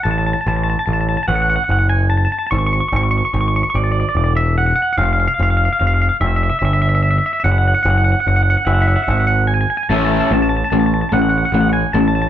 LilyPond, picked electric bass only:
\new Staff \with { instrumentName = "Picked electric bass" } { \clef bass \time 6/8 \key a \major \tempo 4. = 49 a,,8 a,,8 a,,8 a,,8 fis,,4 | gis,,8 gis,,8 gis,,8 gis,,8 e,,4 | f,,8 f,,8 f,,8 f,,8 g,,4 | fis,,8 fis,,8 fis,,8 fis,,8 gis,,4 |
a,,8 a,,8 a,,8 a,,8 a,,8 a,,8 | }